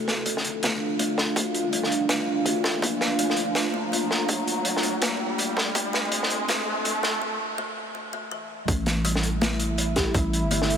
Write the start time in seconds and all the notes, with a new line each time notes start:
Already playing: D2 C4 D4 F4 A4, riser
0.00 F5
0.08 snare
0.26 A3, closed hi-hat
0.37 snare
0.45 closed hi-hat
0.63 A3, snare, closed hi-hat
0.99 A3, closed hi-hat
1.18 snare
1.36 D2 A3, kick, closed hi-hat
1.55 closed hi-hat
1.65 C2
1.73 A3, closed hi-hat
1.83 snare
1.92 closed hi-hat
2.09 A3, snare, closed hi-hat
2.45 D2 A3, closed hi-hat
2.64 kick, snare
2.75 E2
2.82 A#1 A#3, kick, closed hi-hat
3.01 snare
3.19 A3 A#5, closed hi-hat
3.30 snare
3.37 closed hi-hat
3.55 A3, snare, closed hi-hat
3.74 A3
3.92 A#3, closed hi-hat
4.11 snare
4.29 A#1 A3, kick, closed hi-hat
4.48 closed hi-hat
4.58 F1
4.65 A3, closed hi-hat
4.77 snare
4.83 A3, closed hi-hat
5.02 A#3, snare, closed hi-hat
5.38 A3, closed hi-hat
5.57 kick, snare
5.75 F1 A3 C4, kick, closed hi-hat
5.93 A3, snare
6.12 A3, closed hi-hat
6.20 A4, snare
6.30 closed hi-hat
6.48 A3, snare, closed hi-hat
6.85 A3, closed hi-hat
7.03 A3, snare
7.22 A3
7.58 A3
7.95 A3
8.13 A3
8.31 E3
8.68 A1 A3 E4, kick, closed hi-hat
8.86 snare, closed hi-hat
8.96 E5
9.05 G3, closed hi-hat
9.16 snare
9.23 closed hi-hat
9.41 A3, snare, closed hi-hat
9.60 closed hi-hat
9.78 A3, closed hi-hat
9.96 G4, kick, snare, closed hi-hat
10.07 G4
10.14 A1 G3, kick, closed hi-hat
10.33 closed hi-hat
10.44 G1
10.51 A3, closed hi-hat
10.62 snare
10.70 closed hi-hat